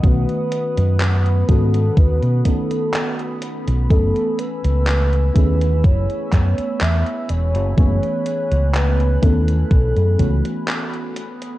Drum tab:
HH |xxxxxxxxxxxxxxxx|xxxxxxxxxxxxxxxx|xxxxxxxxxxxxxxxx|
CP |----x-------x---|----x-----x-x---|----x-------x---|
BD |o-----o-o-o-----|o-----o-o-o-----|o-----o-o-o-----|